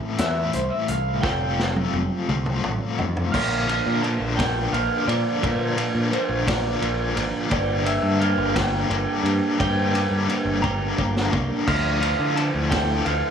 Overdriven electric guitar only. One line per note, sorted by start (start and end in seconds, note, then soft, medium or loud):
0.00 0.16 A2 medium
0.00 0.16 E3 medium
0.00 0.20 A3 loud
0.00 0.20 C4 loud
0.00 0.17 E4 medium
0.19 1.23 A2 medium
0.19 1.23 E3 medium
0.19 1.22 A3 medium
0.19 1.22 C4 medium
0.19 1.22 E4 medium
1.23 2.26 F3 medium
1.23 2.27 A3 medium
1.23 2.27 C4 medium
1.23 2.28 F4 medium
2.29 3.33 F3 medium
2.29 3.32 A3 medium
2.29 3.32 C4 medium
2.29 3.31 F4 medium
3.33 3.67 A#2 medium
3.33 3.67 D3 medium
3.33 3.69 F3 loud
3.33 3.69 A#3 loud
3.33 3.69 D4 medium
3.68 4.03 A#2 medium
3.68 4.03 D3 medium
3.68 4.04 F3 medium
3.68 4.04 A#3 medium
3.68 4.05 D4 medium
4.04 4.37 A#2 medium
4.04 4.38 D3 medium
4.04 4.38 F3 medium
4.04 4.39 A#3 medium
4.04 4.40 D4 loud
4.39 4.73 A#2 medium
4.39 4.73 D3 medium
4.39 4.74 F3 medium
4.39 4.75 A#3 loud
4.39 4.75 D4 medium
4.74 5.07 A#2 medium
4.74 5.07 D3 medium
4.74 5.08 F3 medium
4.74 5.09 A#3 loud
4.74 5.09 D4 medium
5.08 5.41 A#2 medium
5.08 5.41 D3 medium
5.08 5.42 F3 medium
5.08 5.43 A#3 medium
5.08 5.44 D4 medium
5.42 5.76 A#2 loud
5.42 5.77 D3 loud
5.42 5.77 F3 loud
5.42 5.78 A#3 loud
5.42 5.78 D4 loud
5.77 6.11 A#2 medium
5.77 6.11 D3 medium
5.77 6.12 F3 medium
5.77 6.13 A#3 medium
5.77 6.13 D4 medium
6.12 6.46 A#2 medium
6.12 6.46 D3 medium
6.12 6.46 F3 medium
6.12 6.47 A#3 medium
6.12 6.48 D4 medium
6.47 6.80 A#2 medium
6.47 6.81 D3 medium
6.47 6.81 F3 loud
6.47 6.82 A#3 medium
6.47 6.82 D4 medium
6.81 7.14 A#2 medium
6.81 7.14 D3 medium
6.81 7.15 F3 medium
6.81 7.16 A#3 loud
6.81 7.16 D4 medium
7.15 7.48 A#2 medium
7.15 7.49 D3 medium
7.15 7.49 F3 medium
7.15 7.51 A#3 medium
7.15 7.52 D4 medium
7.50 7.85 G2 medium
7.50 7.85 D3 loud
7.50 7.86 G3 loud
7.50 7.86 A#3 loud
7.50 7.86 D4 loud
7.85 8.20 G2 medium
7.85 8.19 D3 medium
7.85 8.20 G3 medium
7.85 8.21 A#3 loud
7.85 8.21 D4 loud
8.20 8.52 G2 medium
8.20 8.53 D3 medium
8.20 8.54 G3 medium
8.20 8.54 A#3 medium
8.20 8.55 D4 medium
8.54 8.88 G2 medium
8.54 8.88 D3 medium
8.54 8.89 G3 medium
8.54 8.89 A#3 medium
8.54 8.90 D4 medium
8.89 9.23 G2 medium
8.89 9.23 D3 medium
8.89 9.23 G3 medium
8.89 9.24 A#3 medium
8.89 9.25 D4 medium
9.24 9.58 G2 medium
9.24 9.58 D3 medium
9.24 9.58 G3 medium
9.24 9.58 A#3 medium
9.24 9.59 D4 medium
9.59 9.92 G2 loud
9.59 9.93 D3 loud
9.59 9.94 G3 medium
9.59 9.93 A#3 loud
9.59 9.95 D4 loud
9.94 10.27 G2 medium
9.94 10.27 D3 medium
9.94 10.28 G3 loud
9.94 10.28 A#3 medium
9.94 10.29 D4 loud
10.28 10.61 G2 medium
10.28 10.61 D3 medium
10.28 10.62 G3 loud
10.28 10.62 A#3 medium
10.28 10.63 D4 medium
10.62 10.96 G2 medium
10.62 10.97 D3 medium
10.62 10.97 G3 medium
10.62 10.97 A#3 medium
10.62 10.99 D4 medium
10.97 11.30 G2 medium
10.97 11.31 D3 medium
10.97 11.31 G3 medium
10.97 11.31 A#3 loud
10.97 11.33 D4 loud
11.31 11.64 G2 medium
11.31 11.65 D3 medium
11.31 11.65 G3 medium
11.31 11.65 A#3 medium
11.31 11.68 D4 medium
11.67 12.01 D3 medium
11.67 12.01 F3 loud
11.67 12.01 A3 medium
11.67 12.02 D4 loud
12.01 12.35 D3 medium
12.01 12.36 F3 medium
12.01 12.35 A3 medium
12.01 12.36 D4 medium
12.35 12.69 D3 medium
12.35 12.70 F3 medium
12.35 12.70 A3 medium
12.35 12.71 D4 medium
12.70 13.05 D3 medium
12.70 13.05 F3 medium
12.70 13.05 A3 medium
12.70 13.06 D4 loud
13.06 13.30 D3 medium
13.06 13.30 F3 medium
13.06 13.30 A3 loud
13.06 13.30 D4 medium